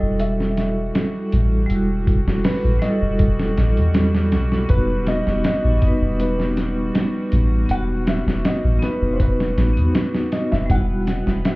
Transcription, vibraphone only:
Already playing: G3 E4 F#4 A4
1.66 G3
1.71 E4
1.75 F#4
2.79 G3
2.84 E4
2.88 A4
4.66 B3
4.70 D#4
4.75 F#4
5.79 B3
5.83 D#4
5.88 B4
7.66 B3
7.75 F#4
8.79 B3
8.83 D#4
8.88 B4
9.73 B3
9.78 D#4
9.82 F#4
10.66 G3
10.71 E4
10.75 F#4

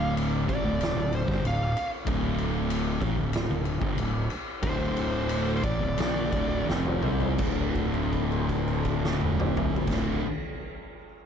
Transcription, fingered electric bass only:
Already playing: D1
0.49 A1
0.65 D1
0.96 D1
1.28 G1
1.45 D1
2.07 D1
3.02 A1
3.18 D1
3.49 D1
3.82 G1
3.98 D1
4.63 D1
5.64 A1
5.81 D1
5.99 A#1
6.33 D1
6.69 F1
7.05 C2
7.39 D1
9.88 D1

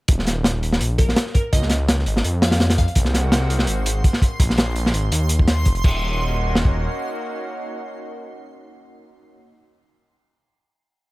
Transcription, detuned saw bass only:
0.09 D#1
0.81 A#1
1.53 C#2
2.06 G#1
2.25 F2
2.96 C2
3.68 G#1
4.40 A#1
4.94 G#1
5.12 D#2
5.66 F1
5.84 D#1

